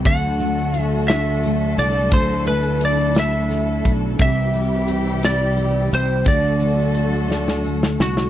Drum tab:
HH |x-x-x-x-x-x-|x-x-x-x-x-x-|x-x-x-x-x-x-|x-x-x-------|
SD |------o-----|------o-o---|------o-----|------oo-ooo|
BD |o-----------|o---------o-|o-----------|o-----------|